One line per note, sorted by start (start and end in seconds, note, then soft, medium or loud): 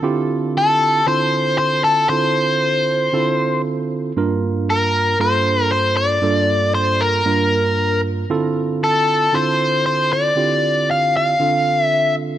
0.02 1.01 D3 medium
0.02 1.01 C4 medium
0.02 1.01 E4 medium
0.02 1.01 F4 medium
0.02 1.02 G4 medium
0.58 1.07 A4 medium
1.06 2.04 D3 medium
1.06 2.05 C4 medium
1.06 2.05 E4 medium
1.06 2.05 F4 medium
1.06 2.05 A4 medium
1.06 1.56 C5 medium
1.58 1.84 C5 loud
1.84 2.09 A4 medium
2.09 3.08 D3 medium
2.09 3.08 C4 medium
2.09 3.08 E4 medium
2.09 3.08 F4 medium
2.09 3.08 A4 medium
2.09 3.61 C5 medium
3.13 4.11 D3 medium
3.13 4.11 C4 medium
3.13 4.11 E4 medium
3.13 4.11 F4 medium
3.13 4.11 A4 medium
4.17 5.14 G2 medium
4.17 5.15 A#3 medium
4.17 5.15 D4 medium
4.17 5.15 F4 medium
4.17 5.15 A#4 medium
4.70 5.18 A#4 medium
5.19 6.17 G2 medium
5.19 6.17 A#3 medium
5.19 6.18 D4 medium
5.19 6.18 F4 medium
5.19 6.18 A4 medium
5.19 5.71 C5 medium
5.72 5.97 C5 loud
5.97 6.74 D5 medium
6.22 7.20 G2 medium
6.22 7.20 A#3 medium
6.22 7.21 D4 medium
6.22 7.21 F4 medium
6.22 7.21 A4 medium
6.75 7.02 C5 medium
7.01 8.00 A#4 medium
7.25 8.23 G2 medium
7.25 8.24 A#3 medium
7.25 8.24 D4 medium
7.25 8.24 F4 medium
7.25 8.24 A#4 medium
8.30 9.27 D3 medium
8.30 9.27 C4 medium
8.30 9.28 E4 medium
8.30 9.28 F4 medium
8.30 9.28 A4 loud
8.84 9.36 A4 medium
9.33 10.30 D3 medium
9.33 10.31 C4 medium
9.33 10.31 E4 medium
9.33 10.31 F4 medium
9.33 10.31 A4 medium
9.33 9.85 C5 medium
9.86 10.12 C5 medium
10.13 10.90 D5 medium
10.36 11.33 D3 medium
10.36 11.34 C4 medium
10.36 11.34 E4 medium
10.36 11.34 F4 medium
10.36 11.34 G4 medium
10.91 11.13 F5 medium
11.17 11.82 F5 medium
11.40 12.37 D3 medium
11.40 12.37 C4 medium
11.40 12.37 D4 medium
11.40 12.38 F4 medium
11.40 12.38 A4 medium
11.82 12.14 E5 medium